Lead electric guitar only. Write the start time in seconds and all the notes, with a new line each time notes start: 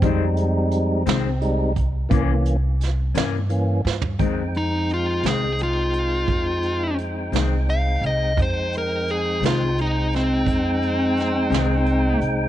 4.57 D#4
4.94 F4
5.28 G#4
5.63 F4
7.70 F5
8.06 D#5
8.42 C5
8.78 A#4
9.11 G#4
9.46 F4
9.81 D#4
10.16 C4